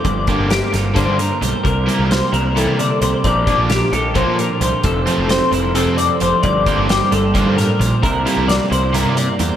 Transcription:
<<
  \new Staff \with { instrumentName = "Clean electric guitar" } { \time 7/8 \key g \dorian \tempo 4 = 131 d''4 g'8 a'8 c''8 bes'8 c''8 | bes'4 c''8 bes'8 a'8 d''8 c''8 | d''4 g'8 a'8 c''8 bes'8 c''8 | a'4 c''8 bes'8 a'8 d''8 c''8 |
d''4 g'8 a'8 c''8 bes'8 c''8 | bes'4 d''8 c''8 bes'8 d''8 c''8 | }
  \new Staff \with { instrumentName = "Overdriven electric guitar" } { \clef bass \time 7/8 \key g \dorian r8 <d g bes d'>8 r4 <d g bes d'>8 r4 | r8 <c g bes e'>8 r4 <c g bes e'>8 r4 | r8 <bes, f bes d'>8 r4 <bes, f bes d'>8 r4 | r8 <c f a c'>8 r4 <c f a c'>8 r4 |
r8 <d g bes d'>8 r4 <d g bes d'>8 r4 | r8 <c g bes e'>8 r4 <c g bes e'>8 r4 | }
  \new Staff \with { instrumentName = "Clean electric guitar" } { \clef bass \time 7/8 \key g \dorian << { r4 bes8 f'4 bes4~ | bes4 bes8 e'2 | <f d' g' bes'>4 d'8 g'4 d'4 | r4 c'8 e'4 c'4 |
r4 bes8 f'2 | <g bes e' bes'>4 bes8 e'4 bes4 | } \\ { <g, f>8 g4. d4 g8 | c8 g4. e8 d8 c8 | bes,8 f4. f4 f8 | f,8 f4. c4 f8 |
g,8 g4. g,8 a,8 bes,8 | c8 g4. g,4 g8 | } >> }
  \new Staff \with { instrumentName = "Picked electric bass" } { \clef bass \time 7/8 \key g \dorian g,,8 r16 g,,8 r16 g,,8. g,8 r16 b,,16 r16 | c,8 r16 c,8 r16 c,8. c8 r16 c,16 r16 | bes,,8 r16 bes,,8 r16 bes,,8. bes,8 r16 c,16 r16 | f,,8 r16 f,,8 r16 f,,8. f,8 r16 f,,16 r16 |
g,,8 r16 g,,8 r16 g,,8. g,8 r16 bes,,16 r16 | c,8 r16 c,8 r16 c,8. c8 r16 e,16 r16 | }
  \new DrumStaff \with { instrumentName = "Drums" } \drummode { \time 7/8 <hh bd>8 <hh bd>8 <hh sn>8 <hh sn>8 <hh bd>8 hh8 hh8 | <hh bd>8 hh8 <hh sn>8 hh8 hh8 hh8 hh8 | <hh bd>8 <hh bd>8 <hh sn>8 hh8 <hh bd>8 hh8 hh8 | <hh bd>8 hh8 <hh sn>8 hh8 hh8 hh8 hh8 |
<hh bd>8 <hh bd>8 <hh sn>8 hh8 <hh bd>8 <hh sn>8 hh8 | <hh bd>8 hh8 <hh sn>8 hh8 hh8 hh8 hh8 | }
>>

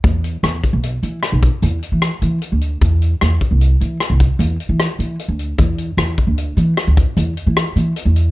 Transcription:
<<
  \new Staff \with { instrumentName = "Upright bass" } { \clef bass \time 7/4 \key c \major \tempo 4 = 152 e,4 e,8 r16 b,,8. e8 r16 b,,8 r16 e,8 r16 e8 r16 e8 r16 d,8. | e,4 e,8 r16 c,8. e8 r16 c,8 r16 e,8 r16 e8 r16 e8 r16 d,8. | e,4 e,8 r16 d,8. e8 r16 d,8 r16 e,8 r16 e8 r16 e8 r16 e,8. | }
  \new DrumStaff \with { instrumentName = "Drums" } \drummode { \time 7/4 <hh bd>8 hh8 <hh ss>8 <hh bd>8 hh8 hh8 <hh ss>8 <hh bd>8 hh8 hh8 <hh ss>8 hh8 hh8 hh8 | <hh bd>8 hh8 <hh ss>8 <hh bd>8 hh8 hh8 <hh ss>8 <hh bd>8 hh8 hh8 <hh ss>8 hh8 hh8 hh8 | <hh bd>8 hh8 <hh ss>8 <hh bd>8 hh8 hh8 <hh ss>8 <hh bd>8 hh8 hh8 <hh ss>8 hh8 hh8 hh8 | }
>>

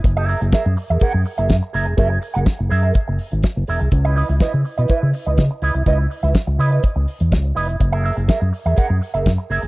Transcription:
<<
  \new Staff \with { instrumentName = "Clean electric guitar" } { \time 4/4 \key fis \mixolydian \tempo 4 = 124 r16 <gis' ais' e''>16 <gis' ais' e''>16 r16 <gis' ais' e''>8 r16 <gis' ais' e''>16 <gis' ais' fis''>8 r16 <gis' ais' e''>16 r8 <gis' ais' e''>8 | <gis' ais' e''>8 r16 <gis' ais' fis''>16 r8 <gis' ais' e''>16 <gis' ais' e''>16 r4. <gis' ais' e''>8 | r16 <e' b' dis''>16 <e' b' dis''>16 r16 <e' b' dis''>8 r16 <e' b' dis''>16 <e' b' e''>8 r16 <e' b' dis''>16 r8 <e' b' dis''>8 | <e' b' dis''>8 r16 <e' b' e''>16 r8 <e' b' dis''>16 <e' b' dis''>16 r4. <e' b' dis''>8 |
r16 <gis' ais' e''>16 <gis' ais' e''>16 r16 <gis' ais' e''>8 r16 <gis' ais' e''>16 <gis' ais' fis''>8 r16 <gis' ais' e''>16 r8 <gis' ais' e''>8 | }
  \new Staff \with { instrumentName = "Fingered electric bass" } { \clef bass \time 4/4 \key fis \mixolydian fis,,8. fis,,16 r16 fis,16 r16 e,16 r16 fis,16 r16 fis,,16 fis,16 r16 fis,,16 eis,,16 | fis,,8 r16 fis,,16 r16 fis,,16 fis,8 r16 fis,,16 r16 gis,,16 r16 fis,,16 e,,16 bis,,16 | cis,8. cis,16 r16 cis16 r16 b,16 r16 cis16 r16 cis,16 cis16 r16 cis,16 bis,,16 | cis,8 r16 cis,16 r16 cis,16 cis8 r16 cis,16 r16 e,16 cis,8 eis,,8 |
fis,,8. fis,,16 r16 fis,16 r16 e,16 r16 fis,16 r16 fis,,16 fis,16 r16 fis,,16 eis,,16 | }
  \new DrumStaff \with { instrumentName = "Drums" } \drummode { \time 4/4 <hh bd>8 hho16 hh16 <hh bd sn>8 hho16 hh16 <hh bd>8 hho16 hh16 <hh bd sn>8 hho16 hh16 | <hh bd>8 hho16 hh16 <hh bd sn>8 hho16 hh16 <hh bd>8 hho16 hh16 <hh bd sn>8 hho16 hh16 | <hh bd>8 hho16 hh16 <hh bd sn>8 hho16 hh16 <hh bd>8 hho16 hh16 <hh bd sn>8 hho16 hh16 | <hh bd>8 hho16 hh16 <hh bd sn>8 hho16 hh16 <hh bd>8 hho16 hh16 <hh bd sn>8 hho16 hh16 |
<hh bd>8 hho16 hh16 <hh bd sn>8 hho16 hh16 <hh bd>8 hho16 hh16 <hh bd sn>8 hho16 hh16 | }
>>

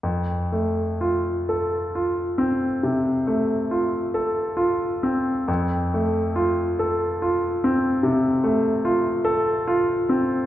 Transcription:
\new Staff \with { instrumentName = "Grand piano" } { \time 12/8 \key f \major \tempo 4. = 46 f,8 a8 f'8 a'8 f'8 c'8 c8 a8 f'8 a'8 f'8 c'8 | f,8 a8 f'8 a'8 f'8 c'8 c8 a8 f'8 a'8 f'8 c'8 | }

